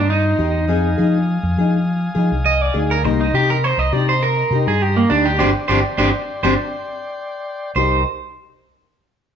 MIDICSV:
0, 0, Header, 1, 7, 480
1, 0, Start_track
1, 0, Key_signature, -3, "minor"
1, 0, Tempo, 588235
1, 567, Time_signature, 4, 2, 24, 8
1, 7634, End_track
2, 0, Start_track
2, 0, Title_t, "Transistor combo organ"
2, 0, Program_c, 0, 18
2, 0, Note_on_c, 0, 75, 63
2, 0, Note_on_c, 0, 82, 60
2, 0, Note_on_c, 0, 84, 70
2, 532, Note_off_c, 0, 82, 0
2, 535, Note_off_c, 0, 75, 0
2, 536, Note_off_c, 0, 84, 0
2, 550, Note_on_c, 0, 87, 75
2, 558, Note_on_c, 0, 77, 74
2, 565, Note_on_c, 0, 80, 60
2, 2462, Note_off_c, 0, 87, 0
2, 2465, Note_off_c, 0, 77, 0
2, 2469, Note_off_c, 0, 80, 0
2, 2469, Note_on_c, 0, 75, 73
2, 2473, Note_on_c, 0, 84, 79
2, 2479, Note_on_c, 0, 82, 63
2, 4381, Note_off_c, 0, 75, 0
2, 4381, Note_on_c, 0, 79, 64
2, 4386, Note_off_c, 0, 82, 0
2, 4390, Note_on_c, 0, 74, 73
2, 6289, Note_off_c, 0, 84, 0
2, 6296, Note_off_c, 0, 79, 0
2, 6300, Note_off_c, 0, 74, 0
2, 6337, Note_on_c, 0, 75, 78
2, 6341, Note_on_c, 0, 72, 62
2, 6343, Note_on_c, 0, 70, 71
2, 6557, Note_off_c, 0, 75, 0
2, 6559, Note_off_c, 0, 72, 0
2, 6560, Note_off_c, 0, 70, 0
2, 7634, End_track
3, 0, Start_track
3, 0, Title_t, "Clean electric guitar"
3, 0, Program_c, 1, 27
3, 82, Note_on_c, 1, 63, 72
3, 1013, Note_off_c, 1, 63, 0
3, 2004, Note_on_c, 1, 75, 91
3, 2135, Note_off_c, 1, 75, 0
3, 2135, Note_on_c, 1, 74, 87
3, 2245, Note_off_c, 1, 74, 0
3, 2376, Note_on_c, 1, 70, 95
3, 2486, Note_off_c, 1, 70, 0
3, 2617, Note_on_c, 1, 63, 50
3, 2727, Note_off_c, 1, 63, 0
3, 2732, Note_on_c, 1, 67, 97
3, 2854, Note_off_c, 1, 67, 0
3, 2856, Note_on_c, 1, 70, 86
3, 2971, Note_off_c, 1, 70, 0
3, 2971, Note_on_c, 1, 72, 98
3, 3093, Note_off_c, 1, 72, 0
3, 3093, Note_on_c, 1, 75, 104
3, 3206, Note_off_c, 1, 75, 0
3, 3206, Note_on_c, 1, 74, 87
3, 3330, Note_off_c, 1, 74, 0
3, 3337, Note_on_c, 1, 72, 84
3, 3447, Note_off_c, 1, 72, 0
3, 3449, Note_on_c, 1, 70, 81
3, 3790, Note_off_c, 1, 70, 0
3, 3818, Note_on_c, 1, 68, 80
3, 3932, Note_off_c, 1, 68, 0
3, 3932, Note_on_c, 1, 67, 79
3, 4052, Note_on_c, 1, 58, 58
3, 4054, Note_off_c, 1, 67, 0
3, 4159, Note_on_c, 1, 62, 93
3, 4164, Note_off_c, 1, 58, 0
3, 4287, Note_off_c, 1, 62, 0
3, 4287, Note_on_c, 1, 67, 99
3, 4389, Note_off_c, 1, 67, 0
3, 4396, Note_on_c, 1, 62, 92
3, 4400, Note_on_c, 1, 67, 79
3, 4405, Note_on_c, 1, 72, 85
3, 4484, Note_off_c, 1, 62, 0
3, 4484, Note_off_c, 1, 67, 0
3, 4485, Note_off_c, 1, 72, 0
3, 4636, Note_on_c, 1, 72, 115
3, 4642, Note_on_c, 1, 67, 91
3, 4644, Note_on_c, 1, 62, 83
3, 4724, Note_off_c, 1, 62, 0
3, 4724, Note_off_c, 1, 72, 0
3, 4725, Note_off_c, 1, 67, 0
3, 4881, Note_on_c, 1, 62, 114
3, 4884, Note_on_c, 1, 72, 110
3, 4885, Note_on_c, 1, 67, 105
3, 4966, Note_off_c, 1, 62, 0
3, 4967, Note_off_c, 1, 72, 0
3, 4968, Note_off_c, 1, 67, 0
3, 5249, Note_on_c, 1, 72, 95
3, 5254, Note_on_c, 1, 67, 87
3, 5260, Note_on_c, 1, 62, 73
3, 5326, Note_off_c, 1, 72, 0
3, 5327, Note_off_c, 1, 67, 0
3, 5328, Note_off_c, 1, 62, 0
3, 6331, Note_on_c, 1, 72, 70
3, 6554, Note_off_c, 1, 72, 0
3, 7634, End_track
4, 0, Start_track
4, 0, Title_t, "Nylon-string guitar"
4, 0, Program_c, 2, 24
4, 316, Note_on_c, 2, 67, 50
4, 337, Note_on_c, 2, 63, 46
4, 471, Note_off_c, 2, 67, 0
4, 481, Note_off_c, 2, 63, 0
4, 553, Note_on_c, 2, 60, 70
4, 558, Note_on_c, 2, 63, 71
4, 563, Note_on_c, 2, 68, 69
4, 709, Note_off_c, 2, 60, 0
4, 712, Note_off_c, 2, 63, 0
4, 714, Note_off_c, 2, 68, 0
4, 796, Note_on_c, 2, 68, 57
4, 811, Note_on_c, 2, 63, 49
4, 951, Note_off_c, 2, 68, 0
4, 958, Note_off_c, 2, 63, 0
4, 1291, Note_on_c, 2, 68, 58
4, 1304, Note_on_c, 2, 63, 53
4, 1439, Note_off_c, 2, 68, 0
4, 1445, Note_off_c, 2, 63, 0
4, 1752, Note_on_c, 2, 68, 62
4, 1773, Note_on_c, 2, 63, 41
4, 1910, Note_off_c, 2, 68, 0
4, 1920, Note_off_c, 2, 63, 0
4, 2235, Note_on_c, 2, 68, 57
4, 2259, Note_on_c, 2, 63, 45
4, 2391, Note_off_c, 2, 68, 0
4, 2403, Note_off_c, 2, 63, 0
4, 2482, Note_on_c, 2, 58, 78
4, 2487, Note_on_c, 2, 63, 75
4, 2497, Note_on_c, 2, 67, 72
4, 2635, Note_off_c, 2, 58, 0
4, 2637, Note_off_c, 2, 63, 0
4, 2643, Note_off_c, 2, 67, 0
4, 2727, Note_on_c, 2, 67, 50
4, 2747, Note_on_c, 2, 63, 41
4, 2878, Note_off_c, 2, 67, 0
4, 2888, Note_off_c, 2, 63, 0
4, 3205, Note_on_c, 2, 67, 59
4, 3227, Note_on_c, 2, 63, 43
4, 3357, Note_off_c, 2, 67, 0
4, 3368, Note_off_c, 2, 63, 0
4, 3691, Note_on_c, 2, 67, 52
4, 3711, Note_on_c, 2, 63, 41
4, 3840, Note_off_c, 2, 67, 0
4, 3850, Note_off_c, 2, 63, 0
4, 4168, Note_on_c, 2, 67, 60
4, 4181, Note_on_c, 2, 63, 46
4, 4318, Note_off_c, 2, 67, 0
4, 4325, Note_off_c, 2, 63, 0
4, 4406, Note_on_c, 2, 60, 91
4, 4410, Note_on_c, 2, 67, 104
4, 4411, Note_on_c, 2, 62, 83
4, 4489, Note_off_c, 2, 60, 0
4, 4490, Note_off_c, 2, 67, 0
4, 4492, Note_off_c, 2, 62, 0
4, 4655, Note_on_c, 2, 60, 91
4, 4655, Note_on_c, 2, 62, 99
4, 4660, Note_on_c, 2, 67, 96
4, 4733, Note_off_c, 2, 62, 0
4, 4735, Note_off_c, 2, 60, 0
4, 4737, Note_off_c, 2, 67, 0
4, 4888, Note_on_c, 2, 60, 100
4, 4889, Note_on_c, 2, 62, 103
4, 4893, Note_on_c, 2, 67, 88
4, 4970, Note_off_c, 2, 62, 0
4, 4971, Note_off_c, 2, 60, 0
4, 4971, Note_off_c, 2, 67, 0
4, 5257, Note_on_c, 2, 60, 100
4, 5261, Note_on_c, 2, 62, 106
4, 5266, Note_on_c, 2, 67, 105
4, 5331, Note_off_c, 2, 60, 0
4, 5331, Note_off_c, 2, 62, 0
4, 5331, Note_off_c, 2, 67, 0
4, 6336, Note_on_c, 2, 63, 88
4, 6342, Note_on_c, 2, 67, 87
4, 6527, Note_off_c, 2, 63, 0
4, 6530, Note_off_c, 2, 67, 0
4, 7634, End_track
5, 0, Start_track
5, 0, Title_t, "Fingered electric bass"
5, 0, Program_c, 3, 33
5, 0, Note_on_c, 3, 43, 99
5, 265, Note_off_c, 3, 43, 0
5, 315, Note_on_c, 3, 40, 78
5, 568, Note_off_c, 3, 40, 0
5, 568, Note_on_c, 3, 41, 101
5, 771, Note_off_c, 3, 41, 0
5, 806, Note_on_c, 3, 53, 89
5, 1117, Note_off_c, 3, 53, 0
5, 1169, Note_on_c, 3, 41, 95
5, 1267, Note_off_c, 3, 41, 0
5, 1284, Note_on_c, 3, 53, 70
5, 1693, Note_off_c, 3, 53, 0
5, 1761, Note_on_c, 3, 53, 102
5, 1871, Note_off_c, 3, 53, 0
5, 1891, Note_on_c, 3, 36, 96
5, 2193, Note_off_c, 3, 36, 0
5, 2241, Note_on_c, 3, 38, 79
5, 2488, Note_on_c, 3, 36, 107
5, 2500, Note_off_c, 3, 38, 0
5, 2692, Note_off_c, 3, 36, 0
5, 2722, Note_on_c, 3, 48, 95
5, 3036, Note_off_c, 3, 48, 0
5, 3081, Note_on_c, 3, 36, 98
5, 3183, Note_off_c, 3, 36, 0
5, 3203, Note_on_c, 3, 48, 80
5, 3613, Note_off_c, 3, 48, 0
5, 3677, Note_on_c, 3, 48, 91
5, 3790, Note_off_c, 3, 48, 0
5, 3809, Note_on_c, 3, 43, 93
5, 4111, Note_off_c, 3, 43, 0
5, 4167, Note_on_c, 3, 38, 74
5, 4407, Note_off_c, 3, 38, 0
5, 4412, Note_on_c, 3, 31, 93
5, 4505, Note_off_c, 3, 31, 0
5, 4644, Note_on_c, 3, 31, 105
5, 4741, Note_off_c, 3, 31, 0
5, 4877, Note_on_c, 3, 31, 101
5, 4977, Note_off_c, 3, 31, 0
5, 5245, Note_on_c, 3, 31, 88
5, 5335, Note_off_c, 3, 31, 0
5, 6328, Note_on_c, 3, 36, 89
5, 6552, Note_off_c, 3, 36, 0
5, 7634, End_track
6, 0, Start_track
6, 0, Title_t, "Muted clean electric guitar strokes"
6, 2491, Note_on_c, 9, 29, 93
6, 2573, Note_off_c, 9, 29, 0
6, 7634, End_track
7, 0, Start_track
7, 0, Title_t, "Muted nylon-string guitar strokes"
7, 6326, Note_on_c, 9, 29, 86
7, 6407, Note_off_c, 9, 29, 0
7, 7634, End_track
0, 0, End_of_file